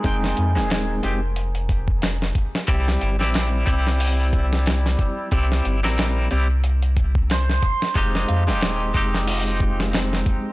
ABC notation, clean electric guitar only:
X:1
M:4/4
L:1/16
Q:"Swing 16ths" 1/4=91
K:Fm
V:1 name="Clean electric guitar"
[A,CEg]3 [A,CEA]3 [A,CEG] z8 z | [G,C=EG]3 [G,CEG]3 [G,CEG]8- [G,CEG]2 | [G,C=EG]3 [G,CEB]3 [G,CEG] z8 z | [A,CEG]3 [A,CEG]3 [A,CEG]8- [A,CEG]2 |]